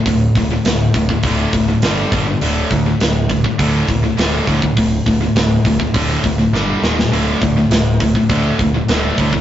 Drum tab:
HH |o-o-o-o-o-o-o-o-|o-o-o-o-o-o-o-o-|o-o-o-o-o-o-----|o-o-o-o-o-o-o-o-|
SD |----o-------o---|----o-------o---|----o-------o-oo|----o-------o---|
BD |o-o---ooo-o---o-|--o---ooo-o---oo|o-o---ooo-o-----|--o---ooo-o---oo|